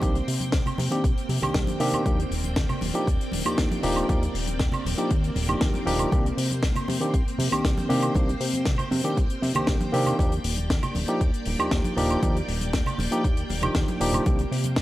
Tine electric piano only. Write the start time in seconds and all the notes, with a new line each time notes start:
0.01 D#3 A#3 C4 D4 G4
0.91 D#3 A#3 C4 D4 G4
1.42 D#3 A#3 C4 D4 G4
1.80 D#3 A#3 C4 D4 G4
2.05 F3 A#3 D4 D#4 G4
2.94 F3 A#3 D4 D#4 G4
3.45 F3 A#3 D4 D#4 G4
3.83 F3 A#3 D4 D#4 G4
4.08 F3 A#3 D4 D#4 G4
4.97 F3 A#3 D4 D#4 G4
5.48 F3 A#3 D4 D#4 G4
5.85 F3 A#3 D4 D#4 G4
6.11 D#3 A#3 C4 D4 G4
7.00 D#3 A#3 C4 D4 G4
7.51 D#3 A#3 C4 D4 G4
7.88 D#3 A#3 C4 D4 G4
8.14 D#3 A#3 C4 D4 G4
9.04 D#3 A#3 C4 D4 G4
9.55 D#3 A#3 C4 D4 G4
9.92 D#3 A#3 C4 D4 G4
10.18 F3 A#3 D4 D#4 G4
11.08 F3 A#3 D4 D#4 G4
11.59 F3 A#3 D4 D#4 G4
11.97 F3 A#3 D4 D#4 G4
12.22 F3 A#3 D4 D#4 G4
13.11 F3 A#3 D4 D#4 G4
13.62 F3 A#3 D4 D#4 G4
14.00 F3 A#3 D4 D#4 G4
14.26 D#3 A#3 C4 D4 G4